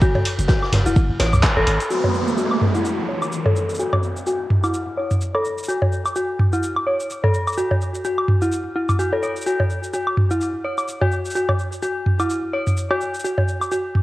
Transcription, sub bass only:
0.15 F#1
0.39 F#1
0.72 F#1
0.86 E1
1.09 F#1
1.20 A1
1.33 C#2
1.57 A1
1.67 G#1

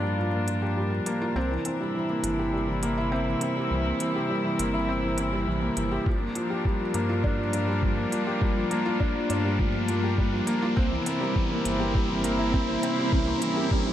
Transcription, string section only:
Already playing: G3 D4 F4 A#4
1.36 C3
1.53 C4
1.80 E4
6.06 G3
6.14 D4
6.33 F4
6.39 A#4
10.76 C3
10.81 C4
10.88 E4

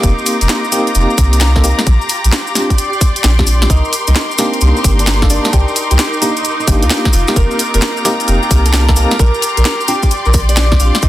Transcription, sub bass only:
0.03 F1
0.41 F1
0.95 F1
1.18 C2
1.87 A#1
2.24 A#1
3.24 A#1
3.70 C2
4.08 C2
4.61 C2
4.84 G1
5.53 C2
5.91 C2
6.68 G1
6.82 D#2
7.13 F1
7.36 F1
7.74 F1
8.28 F1
8.51 C2
9.20 A#1
9.57 A#1
10.26 A#1
10.80 A#1
11.03 C2

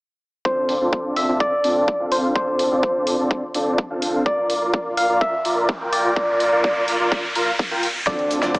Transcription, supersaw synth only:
0.45 C4 D4 F4 A4 D5
0.81 C4 D4 F4 A4 D5
1.28 C4 D4 F4 A4 D5
1.64 C4 D4 F4 A4 D5
2.00 C4 D4 F4 A4 F5
2.35 C4 D4 F4 A4 D5
2.71 C4 D4 F4 A4 D5
3.19 C4 D4 F4 A4 D5
3.54 C4 D4 F4 A4 D5
3.90 C4 D4 F4 A4 F5
4.62 F4 A#4 D5
5.09 F4 A#4 D5
5.45 F4 A#4 D5
5.81 F4 A#4 G5
6.16 F4 D5
6.52 F4 A#4 D5
7.00 F4 A#4 D5
7.35 F4 A#4 F5
7.71 F4 A#4 G5
8.07 C4 D4 F4 A4 D5
8.43 C4 D4 F4 A4 D5

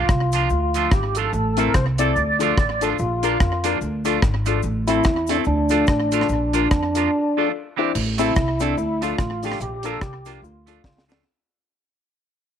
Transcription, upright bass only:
0.09 C2
0.50 D2
0.92 G#1
1.33 A1
1.74 C2
2.16 D2
2.58 A1
2.99 A#1
3.40 F2
3.81 D2
4.22 G#1
4.63 A1
5.46 D2
5.88 A1
6.29 A#1
6.71 F2
7.95 A1
8.37 C2
8.77 D2
9.19 A1
9.60 A#1
10.02 C2
10.42 D2
10.84 C#2

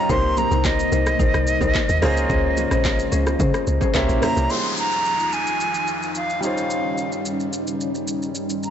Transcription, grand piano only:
Already playing: G3 C#4 D#4 F4 D#5
0.09 A#3 C4 D#4 G4 C5
2.02 A#3 C#4 F4 G#4 C5
3.94 A#3 C#4 E4 G4 C5
4.22 A#3 C#4 E4 G4 C5
4.48 G#3 D#4 F4
4.52 G3 C5
6.41 G3 C#4 D#4
6.45 F4 C5

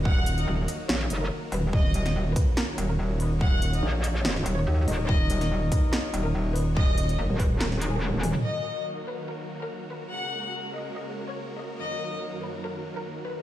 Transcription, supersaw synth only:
Already playing: D#3 F#3 A#3 F#4 A#4
1.73 C#5
8.44 D#3 F#3 A#3 F#4 A#4
10.12 C#3 G#3 A#3
11.80 F#2 D#3 F#3

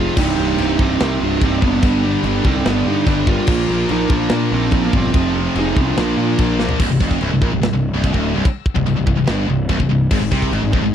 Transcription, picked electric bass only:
0.17 C1
0.37 C1
0.58 C1
0.79 C1
1.01 C2
1.21 C1
1.42 C1
1.62 F#1
1.83 G1
2.23 G1
2.44 C2
2.65 G1
2.86 G2
3.06 G1
3.48 A#1
3.69 A#1
3.89 A#1
4.10 A#1
4.31 A#2
4.51 A#1
4.71 A#1
4.93 G1
5.14 F1
5.55 F1
5.76 C2
5.97 A#1
6.17 A#2
6.39 A#1
6.80 C1
6.90 C1
7.00 F1
7.21 C1
7.31 C1
7.42 A#1
7.52 C1
7.62 C1
7.72 C1
7.93 C1
8.14 D1
8.36 C1
8.45 muted picked electric bass stroke
8.76 C1
8.87 C1
8.99 C1
9.07 C1
9.18 C1
9.28 G1
9.48 C1
9.69 C1
9.80 C1
9.90 C1
10.11 G#1
10.21 G#1
10.32 C2
10.51 G#1
10.62 G#1
10.73 F1
10.81 G#1

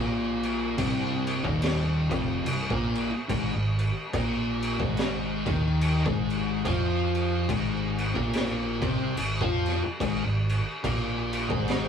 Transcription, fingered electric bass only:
Already playing: A#1
0.79 C1
1.45 D#1
2.11 F1
2.45 C1
2.71 A#1
3.12 muted fingered electric bass stroke
3.30 G#1
3.54 G#1
4.14 A#1
4.80 G#1
5.47 D#2
6.06 G#1
6.66 F2
7.49 G#1
8.16 A#1
8.82 C2
9.17 G#1
9.41 F2
9.83 muted fingered electric bass stroke
10.01 G#1
10.25 G#1
10.84 A#1
11.50 G#1

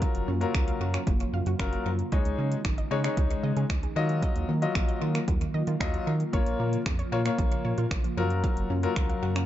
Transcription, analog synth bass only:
0.15 F#1
0.28 F#2
0.55 C#2
0.81 F#2
1.07 F#1
1.33 F#2
1.46 F#2
1.59 F#1
1.86 F#2
2.12 C#2
2.25 C#2
2.38 C#3
2.65 G#1
2.91 C#3
3.17 C#2
3.44 C#3
3.57 C#3
3.70 C#2
3.96 D#3
4.36 D#2
4.49 D#3
4.75 A#1
5.02 D#3
5.28 D#2
5.54 D#3
5.67 D#3
5.80 D#2
6.07 D#3
6.33 A#1
6.46 A#1
6.60 A#2
6.86 F2
7.12 A#2
7.39 A#1
7.65 A#2
7.78 A#2
7.91 A#1
8.17 F#2
8.57 F#1
8.70 F#2
8.96 C#2
9.23 F#2

